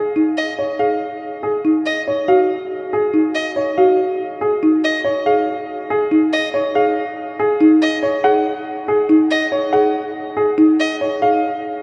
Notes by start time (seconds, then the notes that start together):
Already playing: G#4
0.16 D#4
0.37 D#5
0.59 C#5
0.79 G#4 F5
1.43 G#4
1.65 D#4
1.86 D#5
2.08 C#5
2.28 F#4 F5
2.93 G#4
3.14 D#4
3.35 D#5
3.56 C#5
3.78 F#4 F5
4.41 G#4
4.63 D#4
4.84 D#5
5.04 C#5
5.26 G#4 F5
5.90 G#4
6.11 D#4
6.33 D#5
6.54 C#5
6.75 G#4 F5
7.39 G#4
7.61 D#4
7.82 D#5
8.03 C#5
8.24 G#4 F#5
8.88 G#4
9.09 D#4
9.31 D#5
9.52 C#5
9.73 G#4 F#5
10.37 G#4
10.58 D#4
10.80 D#5
11.01 C#5
11.22 G#4 F5